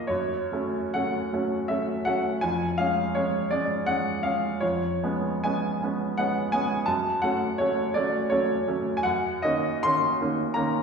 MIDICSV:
0, 0, Header, 1, 2, 480
1, 0, Start_track
1, 0, Key_signature, 3, "minor"
1, 0, Tempo, 858369
1, 51, Time_signature, 3, 2, 24, 8
1, 533, Tempo, 732601
1, 2933, Tempo, 826446
1, 3413, Tempo, 717703
1, 5813, Tempo, 798935
1, 6293, Tempo, 719424
1, 6959, End_track
2, 0, Start_track
2, 0, Title_t, "Grand piano"
2, 0, Program_c, 0, 0
2, 0, Control_c, 0, 64, 127
2, 0, Note_on_c, 0, 51, 35
2, 0, Note_on_c, 0, 53, 36
2, 0, Note_on_c, 0, 58, 38
2, 0, Note_on_c, 0, 61, 41
2, 0, Note_on_c, 0, 65, 41
2, 0, Note_on_c, 0, 70, 52
2, 0, Note_on_c, 0, 75, 59
2, 0, Note_on_c, 0, 77, 73
2, 41, Note_on_c, 0, 73, 66
2, 52, Note_on_c, 0, 42, 55
2, 61, Control_c, 0, 64, 0
2, 62, Note_off_c, 0, 65, 0
2, 63, Note_off_c, 0, 53, 0
2, 63, Note_off_c, 0, 77, 0
2, 64, Note_off_c, 0, 61, 0
2, 64, Note_off_c, 0, 70, 0
2, 65, Note_off_c, 0, 75, 0
2, 66, Note_off_c, 0, 51, 0
2, 68, Note_off_c, 0, 58, 0
2, 173, Control_c, 0, 64, 127
2, 288, Note_off_c, 0, 42, 0
2, 289, Note_on_c, 0, 54, 38
2, 297, Note_on_c, 0, 57, 42
2, 297, Note_on_c, 0, 61, 45
2, 508, Note_off_c, 0, 54, 0
2, 512, Note_off_c, 0, 57, 0
2, 512, Note_off_c, 0, 61, 0
2, 524, Note_on_c, 0, 78, 72
2, 528, Note_off_c, 0, 73, 0
2, 531, Note_on_c, 0, 54, 40
2, 536, Note_on_c, 0, 57, 38
2, 537, Note_on_c, 0, 61, 43
2, 757, Note_off_c, 0, 54, 0
2, 760, Note_off_c, 0, 57, 0
2, 760, Note_off_c, 0, 61, 0
2, 780, Note_on_c, 0, 54, 43
2, 780, Note_on_c, 0, 57, 41
2, 786, Note_on_c, 0, 61, 47
2, 996, Note_off_c, 0, 54, 0
2, 997, Note_off_c, 0, 57, 0
2, 1000, Note_off_c, 0, 61, 0
2, 1010, Note_on_c, 0, 76, 68
2, 1017, Note_off_c, 0, 78, 0
2, 1020, Note_on_c, 0, 54, 39
2, 1025, Note_on_c, 0, 57, 41
2, 1027, Note_on_c, 0, 61, 44
2, 1238, Note_off_c, 0, 54, 0
2, 1241, Note_off_c, 0, 57, 0
2, 1241, Note_off_c, 0, 61, 0
2, 1252, Note_on_c, 0, 78, 79
2, 1257, Note_off_c, 0, 76, 0
2, 1262, Note_on_c, 0, 54, 44
2, 1265, Note_on_c, 0, 57, 42
2, 1268, Note_on_c, 0, 61, 45
2, 1479, Note_off_c, 0, 54, 0
2, 1480, Note_off_c, 0, 57, 0
2, 1482, Note_off_c, 0, 61, 0
2, 1490, Note_on_c, 0, 80, 74
2, 1498, Note_off_c, 0, 78, 0
2, 1502, Note_on_c, 0, 41, 56
2, 1513, Control_c, 0, 64, 0
2, 1609, Control_c, 0, 64, 127
2, 1728, Note_on_c, 0, 77, 74
2, 1733, Note_off_c, 0, 41, 0
2, 1734, Note_off_c, 0, 80, 0
2, 1740, Note_on_c, 0, 61, 46
2, 1742, Note_on_c, 0, 56, 38
2, 1952, Note_off_c, 0, 61, 0
2, 1953, Note_off_c, 0, 56, 0
2, 1969, Note_off_c, 0, 77, 0
2, 1971, Note_on_c, 0, 73, 65
2, 1977, Note_on_c, 0, 56, 43
2, 1981, Note_on_c, 0, 61, 46
2, 2187, Note_off_c, 0, 56, 0
2, 2190, Note_off_c, 0, 61, 0
2, 2205, Note_on_c, 0, 74, 70
2, 2207, Note_off_c, 0, 73, 0
2, 2213, Note_on_c, 0, 56, 37
2, 2219, Note_on_c, 0, 61, 46
2, 2425, Note_off_c, 0, 56, 0
2, 2429, Note_off_c, 0, 61, 0
2, 2441, Note_on_c, 0, 78, 83
2, 2445, Note_off_c, 0, 74, 0
2, 2448, Note_on_c, 0, 56, 44
2, 2449, Note_on_c, 0, 61, 46
2, 2663, Note_off_c, 0, 56, 0
2, 2664, Note_off_c, 0, 61, 0
2, 2680, Note_on_c, 0, 77, 66
2, 2684, Note_off_c, 0, 78, 0
2, 2686, Note_on_c, 0, 56, 40
2, 2692, Note_on_c, 0, 61, 42
2, 2908, Note_off_c, 0, 56, 0
2, 2911, Note_off_c, 0, 61, 0
2, 2926, Note_on_c, 0, 73, 68
2, 2929, Note_off_c, 0, 77, 0
2, 2933, Note_on_c, 0, 41, 53
2, 2944, Control_c, 0, 64, 0
2, 3029, Control_c, 0, 64, 127
2, 3164, Note_off_c, 0, 41, 0
2, 3176, Note_on_c, 0, 59, 41
2, 3177, Note_on_c, 0, 56, 41
2, 3179, Note_on_c, 0, 61, 41
2, 3393, Note_off_c, 0, 56, 0
2, 3393, Note_off_c, 0, 59, 0
2, 3394, Note_off_c, 0, 61, 0
2, 3409, Note_on_c, 0, 80, 75
2, 3410, Note_off_c, 0, 73, 0
2, 3416, Note_on_c, 0, 56, 41
2, 3418, Note_on_c, 0, 59, 41
2, 3420, Note_on_c, 0, 61, 45
2, 3644, Note_off_c, 0, 56, 0
2, 3645, Note_off_c, 0, 59, 0
2, 3647, Note_off_c, 0, 61, 0
2, 3668, Note_on_c, 0, 56, 44
2, 3671, Note_on_c, 0, 59, 42
2, 3673, Note_on_c, 0, 61, 44
2, 3885, Note_off_c, 0, 56, 0
2, 3886, Note_off_c, 0, 59, 0
2, 3887, Note_off_c, 0, 61, 0
2, 3903, Note_on_c, 0, 78, 80
2, 3906, Note_off_c, 0, 80, 0
2, 3907, Note_on_c, 0, 56, 41
2, 3911, Note_on_c, 0, 59, 43
2, 3917, Note_on_c, 0, 61, 45
2, 4120, Note_off_c, 0, 56, 0
2, 4122, Note_off_c, 0, 59, 0
2, 4125, Note_off_c, 0, 61, 0
2, 4135, Note_on_c, 0, 80, 81
2, 4141, Note_off_c, 0, 78, 0
2, 4145, Note_on_c, 0, 56, 43
2, 4146, Note_on_c, 0, 59, 44
2, 4149, Note_on_c, 0, 61, 46
2, 4354, Note_off_c, 0, 56, 0
2, 4355, Note_off_c, 0, 59, 0
2, 4356, Note_off_c, 0, 61, 0
2, 4359, Note_on_c, 0, 81, 75
2, 4370, Note_on_c, 0, 42, 54
2, 4372, Note_off_c, 0, 80, 0
2, 4389, Control_c, 0, 64, 0
2, 4495, Control_c, 0, 64, 127
2, 4600, Note_on_c, 0, 78, 77
2, 4602, Note_off_c, 0, 42, 0
2, 4603, Note_off_c, 0, 81, 0
2, 4610, Note_on_c, 0, 54, 41
2, 4613, Note_on_c, 0, 57, 42
2, 4614, Note_on_c, 0, 61, 45
2, 4826, Note_off_c, 0, 54, 0
2, 4828, Note_off_c, 0, 57, 0
2, 4828, Note_off_c, 0, 61, 0
2, 4844, Note_on_c, 0, 73, 71
2, 4845, Note_off_c, 0, 78, 0
2, 4858, Note_on_c, 0, 54, 40
2, 4861, Note_on_c, 0, 57, 40
2, 4865, Note_on_c, 0, 61, 46
2, 5071, Note_off_c, 0, 54, 0
2, 5073, Note_off_c, 0, 57, 0
2, 5075, Note_off_c, 0, 61, 0
2, 5084, Note_on_c, 0, 74, 68
2, 5088, Note_off_c, 0, 73, 0
2, 5095, Note_on_c, 0, 54, 41
2, 5097, Note_on_c, 0, 61, 45
2, 5101, Note_on_c, 0, 57, 44
2, 5308, Note_off_c, 0, 54, 0
2, 5310, Note_off_c, 0, 61, 0
2, 5311, Note_off_c, 0, 57, 0
2, 5322, Note_on_c, 0, 73, 74
2, 5327, Note_off_c, 0, 74, 0
2, 5334, Note_on_c, 0, 54, 41
2, 5337, Note_on_c, 0, 57, 44
2, 5338, Note_on_c, 0, 61, 50
2, 5545, Note_off_c, 0, 54, 0
2, 5547, Note_off_c, 0, 57, 0
2, 5548, Note_off_c, 0, 61, 0
2, 5563, Note_off_c, 0, 73, 0
2, 5575, Note_on_c, 0, 54, 46
2, 5576, Note_on_c, 0, 57, 42
2, 5582, Note_on_c, 0, 61, 46
2, 5772, Note_on_c, 0, 80, 70
2, 5792, Note_off_c, 0, 54, 0
2, 5792, Note_off_c, 0, 57, 0
2, 5795, Note_off_c, 0, 61, 0
2, 5813, Note_on_c, 0, 78, 78
2, 5815, Note_off_c, 0, 80, 0
2, 5824, Control_c, 0, 64, 0
2, 5825, Note_on_c, 0, 42, 55
2, 5930, Control_c, 0, 64, 127
2, 6049, Note_on_c, 0, 75, 77
2, 6051, Note_off_c, 0, 42, 0
2, 6052, Note_off_c, 0, 78, 0
2, 6058, Note_on_c, 0, 51, 43
2, 6062, Note_on_c, 0, 58, 43
2, 6064, Note_on_c, 0, 61, 50
2, 6272, Note_off_c, 0, 51, 0
2, 6274, Note_off_c, 0, 58, 0
2, 6275, Note_off_c, 0, 61, 0
2, 6291, Note_off_c, 0, 75, 0
2, 6293, Note_on_c, 0, 84, 92
2, 6304, Note_on_c, 0, 58, 43
2, 6305, Note_on_c, 0, 51, 45
2, 6309, Note_on_c, 0, 61, 52
2, 6521, Note_off_c, 0, 51, 0
2, 6521, Note_off_c, 0, 58, 0
2, 6523, Note_off_c, 0, 61, 0
2, 6547, Note_on_c, 0, 51, 43
2, 6550, Note_on_c, 0, 58, 44
2, 6554, Note_on_c, 0, 61, 47
2, 6756, Note_off_c, 0, 51, 0
2, 6758, Note_off_c, 0, 58, 0
2, 6760, Note_off_c, 0, 61, 0
2, 6767, Note_on_c, 0, 82, 74
2, 6776, Note_off_c, 0, 84, 0
2, 6776, Note_on_c, 0, 51, 48
2, 6781, Note_on_c, 0, 61, 51
2, 6782, Note_on_c, 0, 58, 47
2, 6959, Note_off_c, 0, 51, 0
2, 6959, Note_off_c, 0, 58, 0
2, 6959, Note_off_c, 0, 61, 0
2, 6959, Note_off_c, 0, 82, 0
2, 6959, End_track
0, 0, End_of_file